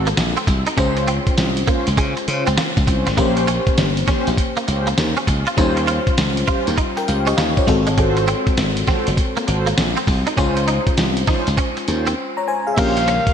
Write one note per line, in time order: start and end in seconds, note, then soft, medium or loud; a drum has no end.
0.00 0.12 G#1 medium
0.00 0.43 G#3 medium
0.00 0.43 C4 medium
0.00 0.44 F#4 medium
0.00 0.44 A4 medium
0.07 0.13 A#3 medium
0.07 closed hi-hat medium
0.17 0.33 A#1 medium
0.17 snare loud
0.17 closed hi-hat medium
0.37 0.43 C4 medium
0.37 closed hi-hat soft
0.47 0.63 C2 medium
0.47 muted clean electric guitar stroke soft
0.47 kick medium
0.47 closed hi-hat medium
0.67 0.73 D#4 medium
0.67 closed hi-hat medium
0.77 1.18 C#2 loud
0.77 3.13 G#3 medium
0.77 1.06 C#4 medium
0.77 3.13 C#4 medium
0.77 0.89 C#4 medium
0.77 1.06 F4 medium
0.77 3.14 F4 medium
0.77 1.06 C5 medium
0.77 3.14 C5 medium
0.77 kick medium
0.77 closed hi-hat medium
0.97 muted clean electric guitar stroke soft
0.97 closed hi-hat soft
1.07 1.19 C4 medium
1.07 closed hi-hat medium
1.27 kick medium
1.27 closed hi-hat medium
1.37 1.62 C2 loud
1.37 snare loud
1.37 closed hi-hat medium
1.57 closed hi-hat medium
1.67 1.79 A#3 medium
1.67 1.88 C#4 medium
1.67 1.88 F4 medium
1.67 1.89 C5 medium
1.67 kick medium
1.67 closed hi-hat medium
1.87 1.96 C#2 medium
1.87 closed hi-hat medium
1.97 2.13 C#3 medium
1.97 2.09 G#3 medium
1.97 kick medium
1.97 closed hi-hat medium
2.17 muted clean electric guitar stroke soft
2.17 closed hi-hat soft
2.27 2.44 C#3 medium
2.27 2.48 C#4 medium
2.27 2.48 F4 medium
2.27 2.49 C5 medium
2.27 closed hi-hat medium
2.47 2.56 C#2 medium
2.47 2.53 C4 medium
2.47 closed hi-hat medium
2.57 2.69 A#3 medium
2.57 snare loud
2.57 closed hi-hat medium
2.77 2.86 C#2 loud
2.77 kick loud
2.77 closed hi-hat soft
2.87 3.03 C2 medium
2.87 3.08 C#4 medium
2.87 3.08 F4 medium
2.87 3.09 C5 medium
2.87 muted clean electric guitar stroke soft
2.87 kick medium
2.87 closed hi-hat medium
3.07 3.16 G#1 medium
3.07 3.13 C4 medium
3.07 snare medium
3.07 closed hi-hat soft
3.17 3.58 A#1 loud
3.17 5.53 A#3 medium
3.17 3.29 A#3 medium
3.17 3.46 C#4 medium
3.17 5.54 C#4 medium
3.17 3.46 G4 medium
3.17 5.54 G4 medium
3.17 3.46 C5 loud
3.17 5.54 C5 medium
3.17 kick loud
3.17 closed hi-hat medium
3.37 muted clean electric guitar stroke soft
3.37 closed hi-hat medium
3.47 3.59 C#4 medium
3.47 closed hi-hat medium
3.67 kick loud
3.67 closed hi-hat medium
3.78 4.02 G1 loud
3.78 snare loud
3.78 closed hi-hat medium
3.97 closed hi-hat medium
4.07 4.28 C#4 medium
4.07 4.19 C#4 medium
4.07 4.28 G4 medium
4.07 4.29 C5 medium
4.07 kick medium
4.07 snare medium
4.07 closed hi-hat medium
4.27 4.36 A#1 medium
4.27 closed hi-hat medium
4.38 kick medium
4.38 closed hi-hat medium
4.57 4.63 A#3 medium
4.57 closed hi-hat medium
4.67 4.92 C#2 medium
4.67 4.88 C#4 medium
4.67 4.88 G4 medium
4.67 4.89 C5 medium
4.67 muted clean electric guitar stroke soft
4.67 closed hi-hat medium
4.87 4.94 A#3 medium
4.87 closed hi-hat medium
4.98 5.14 D#2 medium
4.98 snare loud
4.98 closed hi-hat medium
5.17 5.23 C#4 medium
5.17 closed hi-hat soft
5.27 5.43 C#2 medium
5.27 muted clean electric guitar stroke soft
5.27 kick medium
5.27 closed hi-hat medium
5.47 5.53 F4 medium
5.47 closed hi-hat soft
5.57 5.98 D#2 loud
5.57 7.63 G3 medium
5.57 5.86 C#4 medium
5.57 7.64 C#4 medium
5.57 5.69 D#4 medium
5.57 5.86 F4 medium
5.57 6.76 F4 medium
5.57 5.86 G4 medium
5.57 5.86 C5 loud
5.57 6.76 C5 medium
5.57 kick loud
5.57 closed hi-hat medium
5.77 muted clean electric guitar stroke soft
5.77 closed hi-hat soft
5.87 5.99 F4 medium
5.87 closed hi-hat medium
6.07 kick medium
6.07 closed hi-hat soft
6.18 6.43 C#2 loud
6.18 snare loud
6.18 closed hi-hat medium
6.37 closed hi-hat medium
6.47 6.68 C#4 medium
6.47 6.59 F4 medium
6.47 6.68 F4 medium
6.47 6.69 G4 medium
6.47 6.69 C5 medium
6.47 kick loud
6.47 closed hi-hat medium
6.67 6.76 D#2 medium
6.67 closed hi-hat medium
6.78 6.89 D#4 medium
6.78 kick medium
6.78 closed hi-hat medium
6.97 7.08 A#4 medium
6.97 7.07 G5 medium
6.97 muted clean electric guitar stroke soft
6.97 closed hi-hat soft
7.07 7.33 C#2 medium
7.07 7.28 C#4 medium
7.07 7.28 F4 medium
7.07 7.29 G4 medium
7.07 7.29 C5 medium
7.07 7.26 F5 medium
7.07 closed hi-hat medium
7.27 7.33 C#4 medium
7.27 7.56 G4 medium
7.27 7.55 D#5 medium
7.27 closed hi-hat medium
7.37 7.54 D#2 medium
7.37 7.49 A#3 medium
7.37 snare loud
7.37 closed hi-hat medium
7.56 7.70 C#4 medium
7.56 7.70 F4 medium
7.56 7.86 F4 medium
7.56 7.71 G4 medium
7.56 7.71 C5 medium
7.56 7.85 C#5 medium
7.56 kick loud
7.56 closed hi-hat soft
7.67 8.32 G#1 loud
7.67 10.03 G#3 medium
7.67 10.04 C4 medium
7.67 10.04 F#4 medium
7.67 10.04 A4 medium
7.67 muted clean electric guitar stroke soft
7.67 kick medium
7.67 closed hi-hat medium
7.87 7.93 G#3 medium
7.87 closed hi-hat medium
7.97 8.09 G#3 medium
7.97 8.26 F#4 medium
7.97 8.26 A4 medium
7.97 8.26 C5 loud
7.97 kick loud
7.97 closed hi-hat medium
8.17 muted clean electric guitar stroke medium
8.17 closed hi-hat medium
8.28 8.39 C4 medium
8.28 closed hi-hat medium
8.47 kick medium
8.47 closed hi-hat medium
8.57 8.83 G#1 loud
8.57 snare loud
8.57 closed hi-hat medium
8.77 closed hi-hat medium
8.87 8.99 C4 medium
8.87 9.08 F#4 medium
8.87 9.08 A4 medium
8.87 9.09 C5 medium
8.87 kick medium
8.87 snare medium
8.87 open hi-hat medium
9.07 9.16 F#1 medium
9.07 closed hi-hat medium
9.17 kick medium
9.17 closed hi-hat medium
9.37 9.43 A#3 medium
9.37 closed hi-hat soft
9.47 9.72 G#1 medium
9.47 9.68 F#4 medium
9.47 9.68 A4 medium
9.47 9.69 C5 medium
9.47 muted clean electric guitar stroke soft
9.47 closed hi-hat medium
9.66 9.73 A#3 medium
9.66 closed hi-hat medium
9.78 9.94 A#1 medium
9.78 snare loud
9.78 closed hi-hat medium
9.97 10.03 C4 medium
9.97 closed hi-hat soft
10.07 10.23 C2 medium
10.07 muted clean electric guitar stroke soft
10.07 kick medium
10.07 open hi-hat medium
10.27 10.33 D#4 medium
10.27 closed hi-hat soft
10.37 10.78 C#2 loud
10.37 12.73 G#3 medium
10.37 10.66 C#4 medium
10.37 12.73 C#4 medium
10.37 10.49 C#4 medium
10.37 10.66 F4 medium
10.37 12.74 F4 medium
10.37 10.66 C5 medium
10.37 12.15 C5 medium
10.37 kick medium
10.37 closed hi-hat medium
10.57 muted clean electric guitar stroke soft
10.57 closed hi-hat soft
10.68 10.79 D#4 medium
10.68 closed hi-hat medium
10.87 kick loud
10.87 closed hi-hat medium
10.97 11.23 C2 loud
10.97 snare loud
10.97 closed hi-hat medium
11.17 closed hi-hat medium
11.27 11.48 C#4 medium
11.27 11.39 D#4 medium
11.27 11.48 F4 medium
11.27 11.49 C5 medium
11.27 kick loud
11.27 snare medium
11.27 open hi-hat medium
11.47 11.56 C#2 medium
11.47 closed hi-hat medium
11.57 11.69 C#4 medium
11.57 kick medium
11.57 closed hi-hat medium
11.77 muted clean electric guitar stroke soft
11.77 closed hi-hat soft
11.87 12.12 D#2 medium
11.87 12.08 C#4 medium
11.87 12.08 F4 medium
11.87 12.09 C5 medium
11.87 closed hi-hat medium
12.07 12.13 C4 medium
12.07 closed hi-hat medium
12.37 12.47 C#5 medium
12.37 12.47 A#5 medium
12.48 12.66 C5 medium
12.48 12.66 G#5 medium
12.67 12.96 G#4 medium
12.67 12.95 F5 medium
12.74 13.34 C#3 medium
12.74 13.34 F3 medium
12.74 13.34 G3 medium
12.74 13.34 A#3 medium
12.74 12.89 A#3 medium
12.74 13.06 C#4 medium
12.74 13.34 C#4 medium
12.74 13.06 G4 medium
12.74 12.81 E5 medium
12.74 kick loud
12.74 closed hi-hat medium
12.74 crash medium
12.78 13.18 A#1 loud
12.78 13.34 G4 medium
12.78 13.34 A#4 medium
12.78 13.06 C5 loud
12.78 13.34 F5 loud
12.97 muted clean electric guitar stroke soft
12.97 closed hi-hat medium
13.08 13.19 C#4 medium
13.08 closed hi-hat medium
13.27 kick medium
13.27 closed hi-hat medium